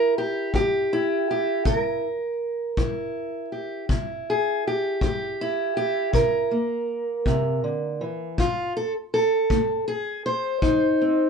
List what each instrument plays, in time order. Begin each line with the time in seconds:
Already playing: steel-string acoustic guitar E4 A#4
0.18 steel-string acoustic guitar G4
0.54 steel-string acoustic guitar E3 G4, kick
0.93 steel-string acoustic guitar E4
1.31 steel-string acoustic guitar G4
1.65 steel-string acoustic guitar C3 A#4, kick
2.77 steel-string acoustic guitar E3 E4, kick
3.52 steel-string acoustic guitar G4
3.89 steel-string acoustic guitar C3 E4, kick
4.30 steel-string acoustic guitar G#4
4.67 steel-string acoustic guitar G4
5.01 steel-string acoustic guitar E3 G4, kick
5.41 steel-string acoustic guitar E4
5.77 steel-string acoustic guitar G4
6.13 steel-string acoustic guitar C3 A#4, kick
6.51 steel-string acoustic guitar A#3
7.26 steel-string acoustic guitar C3, kick
7.64 steel-string acoustic guitar D3
8.01 steel-string acoustic guitar E3
8.38 steel-string acoustic guitar F2 F4, kick
8.77 steel-string acoustic guitar A4
9.14 steel-string acoustic guitar A4
9.50 steel-string acoustic guitar A3, kick
9.88 steel-string acoustic guitar G#4
10.26 steel-string acoustic guitar C5
10.62 steel-string acoustic guitar F2 D#4, kick
11.02 steel-string acoustic guitar C4